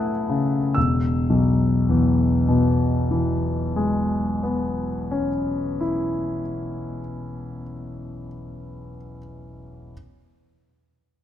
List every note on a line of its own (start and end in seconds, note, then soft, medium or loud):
0.00 0.72 F#2 medium
0.00 0.58 A3 soft
0.00 0.10 E4 soft
0.00 0.79 G#4 soft
0.00 0.79 B4 soft
0.00 0.71 F#5 soft
0.00 0.71 B5 soft
0.00 0.71 D#6 medium
0.00 0.75 F#6 medium
0.29 0.75 C#3 soft
0.74 5.28 E1 soft
0.74 5.26 E6 soft
1.30 5.81 B1 soft
1.89 6.41 E2 soft
2.48 7.00 B2 soft
3.11 7.62 E3 soft
3.76 8.27 G#3 soft
4.43 8.95 B3 soft
5.11 9.18 C#4 soft
5.80 9.17 E4 soft